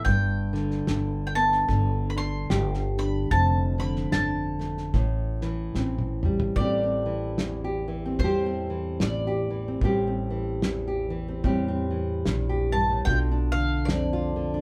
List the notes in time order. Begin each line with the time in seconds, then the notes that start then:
Already playing: G3
0.05 G1 G2 G5, kick, snare
0.53 D3, snare
0.71 snare
0.87 G1 D4, snare
1.27 G5
1.35 B3 A5, snare
1.52 snare
1.68 G1 D3, kick, snare
2.10 B5
2.16 D4 C6, snare
2.50 G1 G4, snare
2.74 snare
2.97 D4 B5, snare
3.31 F1 F2 A5, kick, snare
3.78 D3 B5, snare
3.96 snare
4.12 G1 D4 A5, snare
4.59 A3, snare
4.77 snare
4.93 A1 A2, kick, snare
5.41 E3, snare
5.75 A1 C4, snare
5.99 high tom
6.23 G3, mid tom
6.40 floor tom
6.56 A1 A2 G3 C4 D5, kick
6.60 G4
6.83 C4
7.06 E3
7.38 E2, snare
7.64 G4
7.88 E3
8.06 C4
8.19 E2 A2 C5, kick
8.23 G3 C4 G4
8.46 C4
8.70 E3
9.00 A1 E2 D5, snare
9.27 G4
9.50 E3
9.68 C4
9.81 A1 A2 G3 C4 G4, kick
10.07 C4
10.30 E3
10.62 E2, snare
10.88 G4
11.10 E3
11.28 C4
11.44 E2 A2 G3 C4 G4, kick
11.68 C4
11.91 E3
12.26 A#1 E2, snare
12.49 G4
12.72 G2 A5
12.90 A2
13.05 B1 B2 A3 D4 F4 G5, kick
13.31 D4
13.52 D3 F5
13.85 F2 D5, snare
14.13 F4
14.36 D3
14.54 D4